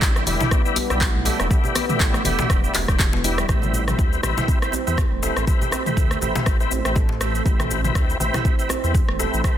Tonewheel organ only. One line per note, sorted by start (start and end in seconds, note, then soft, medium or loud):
0.00 0.24 D4 medium
0.00 0.24 E4 medium
0.00 0.24 G4 medium
0.00 0.24 B4 loud
0.27 0.62 D4 loud
0.27 0.62 E4 medium
0.27 0.62 G4 medium
0.27 0.62 B4 loud
0.65 0.78 D4 loud
0.65 0.78 E4 medium
0.65 0.78 G4 medium
0.65 0.78 B4 loud
0.90 1.03 D4 medium
0.90 1.03 E4 medium
0.90 1.03 G4 medium
0.90 1.03 B4 loud
1.26 1.48 D4 medium
1.26 1.48 E4 medium
1.26 1.48 G4 medium
1.26 1.48 B4 medium
1.51 1.86 D4 medium
1.51 1.86 E4 medium
1.51 1.86 G4 medium
1.51 1.86 B4 medium
1.89 2.23 D4 medium
1.89 2.23 E4 medium
1.89 2.23 G4 medium
1.89 2.23 B4 loud
2.25 2.60 D4 loud
2.25 2.60 E4 medium
2.25 2.60 G4 medium
2.25 2.60 B4 loud
2.64 2.76 D4 loud
2.64 2.76 E4 medium
2.64 2.76 G4 medium
2.64 2.76 B4 loud
2.89 3.01 D4 medium
2.89 3.01 E4 medium
2.89 3.01 G4 medium
2.89 3.01 B4 medium
3.24 3.47 D4 medium
3.24 3.47 E4 medium
3.24 3.47 G4 medium
3.24 3.47 B4 medium
3.49 3.85 C4 medium
3.49 3.85 E4 medium
3.49 3.85 G4 medium
3.49 3.85 B4 medium
3.88 4.21 C4 medium
3.88 4.21 E4 medium
3.88 4.21 G4 medium
3.88 4.21 B4 medium
4.23 4.59 C4 medium
4.23 4.59 E4 medium
4.23 4.59 G4 medium
4.23 4.59 B4 loud
4.62 4.75 C4 medium
4.62 4.75 E4 medium
4.62 4.75 G4 medium
4.62 4.75 B4 loud
4.87 4.99 C4 medium
4.87 4.99 E4 medium
4.87 4.99 G4 medium
4.87 4.99 B4 medium
5.23 5.45 C4 medium
5.23 5.45 E4 medium
5.23 5.45 G4 medium
5.23 5.45 B4 medium
5.47 5.83 C4 medium
5.47 5.83 E4 medium
5.47 5.83 G4 medium
5.47 5.83 B4 medium
5.86 6.19 C4 medium
5.86 6.19 E4 medium
5.86 6.19 G4 medium
5.86 6.19 B4 medium
6.22 6.57 C4 loud
6.22 6.57 E4 medium
6.22 6.57 G4 medium
6.22 6.57 B4 loud
6.60 6.73 C4 medium
6.60 6.73 E4 medium
6.60 6.73 G4 medium
6.60 6.73 B4 loud
6.85 6.98 C4 medium
6.85 6.98 E4 medium
6.85 6.98 G4 medium
6.85 6.98 B4 medium
7.21 7.43 C4 medium
7.21 7.43 E4 medium
7.21 7.43 G4 medium
7.21 7.43 B4 medium
7.46 7.81 C4 medium
7.46 7.81 E4 medium
7.46 7.81 G4 medium
7.46 7.81 B4 medium
7.84 8.18 C4 medium
7.84 8.18 E4 medium
7.84 8.18 G4 medium
7.84 8.18 B4 medium
8.20 8.55 C4 loud
8.20 8.55 E4 medium
8.20 8.55 G4 medium
8.20 8.55 B4 loud
8.59 8.71 C4 medium
8.59 8.71 E4 medium
8.59 8.71 G4 medium
8.59 8.71 B4 loud
8.84 8.96 C4 medium
8.84 8.96 E4 medium
8.84 8.96 G4 medium
8.84 8.96 B4 medium
9.19 9.42 C4 medium
9.19 9.42 E4 medium
9.19 9.42 G4 medium
9.19 9.42 B4 medium
9.44 9.58 C4 medium
9.44 9.58 E4 medium
9.44 9.58 G4 medium
9.44 9.58 B4 medium